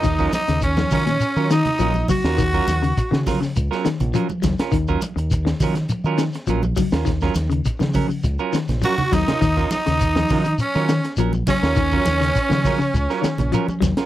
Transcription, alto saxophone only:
\new Staff \with { instrumentName = "Alto saxophone" } { \time 4/4 \key ees \minor \tempo 4 = 102 ees'8 ees'8 des'8 des'4 ees'4 ges'8~ | ges'4. r2 r8 | r1 | r2. ges'8 ees'8~ |
ees'8 ees'4. des'4 r8 des'8~ | des'2.~ des'8 r8 | }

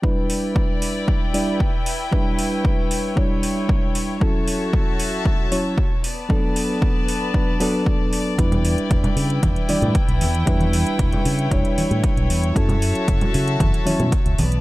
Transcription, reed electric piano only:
\new Staff \with { instrumentName = "Reed electric piano" } { \time 4/4 \key e \dorian \tempo 4 = 115 <g d' e' b'>2~ <g d' e' b'>8 <g d' e' d''>8 r4 | <g d' e' b'>2 <g d' e' cis''>2 | <fis cis' e' a'>2~ <fis cis' e' a'>8 <fis cis' e' cis''>8 r4 | <fis b d' a'>2 <fis b d' b'>8 <fis b d' a'>4. |
<g d' e' b'>2~ <g d' e' b'>8 <g d' e' d''>8 r4 | <g d' e' b'>2 <g d' e' cis''>2 | <fis cis' e' a'>2~ <fis cis' e' a'>8 <fis cis' e' cis''>8 r4 | }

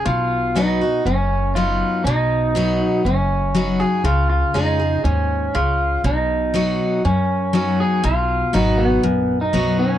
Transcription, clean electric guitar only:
\new Staff \with { instrumentName = "Clean electric guitar" } { \time 4/4 \key ces \lydian \tempo 4 = 120 f'4 ees'4 des'4 f'4 | ees'2 des'4. aes'8 | f'8 f'8 ees'4 des'4 f'4 | ees'2 des'4 des'8 aes'8 |
f'4 ees'8 ces'4~ ces'16 ees'8. des'8 | }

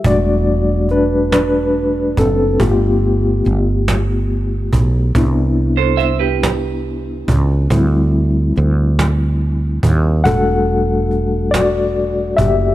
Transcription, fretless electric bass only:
\new Staff \with { instrumentName = "Fretless electric bass" } { \clef bass \time 6/8 \key e \minor \tempo 4. = 47 e,,2~ e,,8 fis,,8 | g,,4 g,,4. b,,8 | c,2~ c,8 cis,8 | d,4 d,4. dis,8 |
e,,2~ e,,8 fis,,8 | }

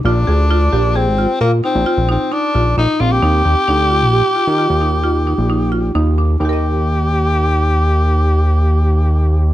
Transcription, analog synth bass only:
\new Staff \with { instrumentName = "Analog synth bass" } { \clef bass \time 7/4 \key ees \major \tempo 4 = 132 bes,,8 d,4 bes,,8. aes,,8 r16 bes,8 r16 bes,,16 r16 bes,,8 r8. bes,,8 bes,,16 r16 bes,,8 | ees,8 ees,16 r16 d,8. bes,,8 r8 ees8 ees,4. bes,,4~ bes,,16 ees,4 | ees,1.~ ees,4 | }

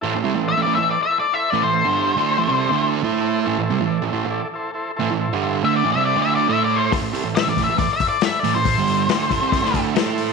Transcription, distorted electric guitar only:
\new Staff \with { instrumentName = "Distorted electric guitar" } { \clef bass \time 4/4 \key a \minor \tempo 4 = 139 <a, e>16 <a, e>16 <c g>16 <a, e>8 <a, e>16 <a, e>16 <a, e>8 r4 r16 <a, e>16 <a, e>16~ | <a, e>16 <g, d g>8. <d a d'>8 <a, e>16 <c g c'>8 <d a d'>8. <a e' a'>4 | <a, e>16 <a, e>16 <c g>16 <a, e>8 <a, e>16 <a, e>16 <a, e>8 r4 r16 <a, e>16 <a, e>16~ | <a, e>16 <g, d g>8. <d a d'>8 <a, e>16 <c g c'>8 <d a d'>8. <a e' a'>4 |
<a, e>16 <a, e>16 <c g>16 <a, e>8 <a, e>16 <a, e>16 <a, e>8 r4 r16 <a, e>16 <a, e>16~ | <a, e>16 <g, d g>8. <d a d'>8 <a, e>16 <c g c'>8 <d a d'>8. <a e' a'>4 | }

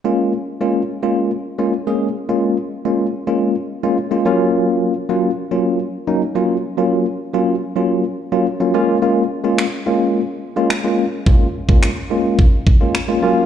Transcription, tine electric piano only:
\new Staff \with { instrumentName = "Tine electric piano" } { \time 4/4 \key bes \minor \tempo 4 = 107 <aes bes des' f'>8 r8 <aes bes des' f'>16 r8 <aes bes des' f'>8 r8 <aes bes des' f'>16 r16 <aes bes des' aes'>16 r8 | <aes bes des' f'>8 r8 <aes bes des' f'>16 r8 <aes bes des' f'>8 r8 <aes bes des' f'>16 r16 <aes bes des' f'>16 <ges bes des' f'>8~ | <ges bes des' f'>8. r16 <ges bes des' f'>16 r8 <ges bes des' f'>8 r8 <ges bes des' ees'>16 r16 <ges bes des' f'>16 r8 | <ges bes des' f'>8 r8 <ges bes des' f'>16 r8 <ges bes des' f'>8 r8 <ges bes des' f'>16 r16 <ges bes des' f'>16 <aes bes des' f'>8 |
<aes bes des' f'>16 r8 <aes bes des' f'>16 r8 <aes bes des' f'>8 r8. <aes bes des' f'>16 r16 <aes bes des' f'>16 r8 | <aes bes des' f'>16 r8 <aes bes des' f'>16 r8 <aes bes des' f'>8 r8. <aes bes des' f'>16 r16 <aes bes des' f'>16 <ges bes des' f'>8 | }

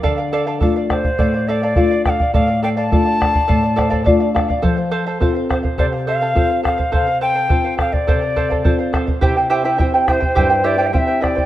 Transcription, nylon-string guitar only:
\new Staff \with { instrumentName = "Nylon-string guitar" } { \time 4/4 \key d \minor \tempo 4 = 104 << { r1 | r2 r8 c''8 d''8 f''8 | r1 | r1 |
r1 | } \\ { d4 <a d' f'>4 a,4 <a d' f'>4 | a,4 <a d' f'>4 a,4 <a d' f'>4 | f4 <c' f' a'>4 c4 <c' f' a'>4 | c4 <c' f' a'>4 c4 <c' f' a'>4 |
c4 <c' e' g'>4 g,4 <c' e' g'>4 | } >> }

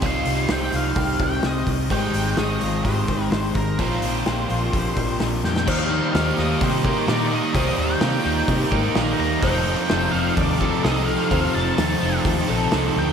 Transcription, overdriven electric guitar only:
\new Staff \with { instrumentName = "Overdriven electric guitar" } { \time 4/4 \key ees \major \tempo 4 = 128 <c g c' ees'>1 | <aes, ees aes c' ees'>1 | <bes, f bes c'>1 | <ees g bes ees' g'>4 <g bes ees' g'>8 <bes ees' g'>4 <bes ees' g'>8 <ees g bes ees' g'>4 |
<ees g bes ees' g'>4 <g bes ees' g'>8 <bes ees' g'>4 <bes ees' g'>8 <ees g bes ees' g'>4 | <f c' ees' a'>4 <f c' ees' a'>8 <c' ees' a'>4 <c' ees' a'>8 <f c' ees' a'>4 | <f c' ees' a'>4 <f c' ees' a'>8 <c' ees' a'>4 <c' ees' a'>8 <f c' ees' a'>4 | }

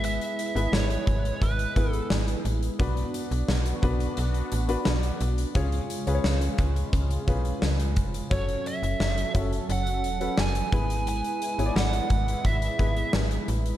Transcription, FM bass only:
\new Staff \with { instrumentName = "FM bass" } { \clef bass \time 4/4 \key e \mixolydian \tempo 4 = 87 gis,,8 r16 gis,,16 gis,,8 gis,,8 gis,,8 gis,,8 gis,,8 a,,8 | b,,8 r16 b,,16 b,,8 b,,8 b,,8 a,,8 b,,8 b,,8 | cis,8 r16 cis,16 cis,8 cis,8 cis,8 b,,8 cis,8 eis,,8 | fis,,8 r16 fis,,16 fis,,8 fis,,8 fis,,8 e,,8 fis,,8 gis,,8~ |
gis,,8 r16 gis,,16 gis,,8 gis,,8 gis,,8 gis,,8 gis,,8 a,,8 | }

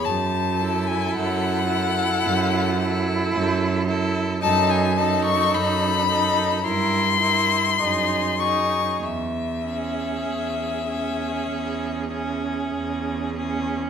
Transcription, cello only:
\new Staff \with { instrumentName = "Cello" } { \clef bass \time 4/4 \key cis \minor \tempo 4 = 54 fis,4 fis,4 fis,4 fis,4 | fis,4 fis,4 g,4 fis,4 | e,4 e,4 e,4 e,4 | }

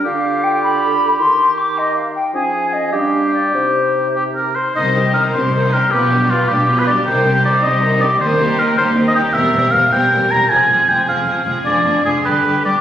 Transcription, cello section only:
\new Staff \with { instrumentName = "Cello section" } { \clef bass \time 6/8 \key c \minor \tempo 4. = 104 r2. | r2. | r2. | r2. |
c4. c4. | b,4. b,4. | c4. c4. | ees,4. ees,4. |
e,8 e,8 e,8 e,8 e,8 e,8 | f,8 f,8 f,8 f,8 f,8 f,8 | f,8 f,8 f,8 g,8 g,8 g,8 | }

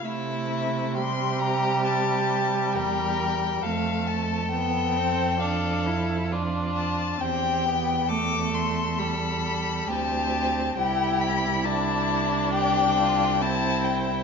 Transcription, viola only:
\new Staff \with { instrumentName = "Viola" } { \time 4/4 \key c \major \tempo 4 = 67 a4 g2. | a4 b8 c'8 d'8 e'8 d'4 | c'8 b8 a4 g4 c'4 | e'4 d'2 c'4 | }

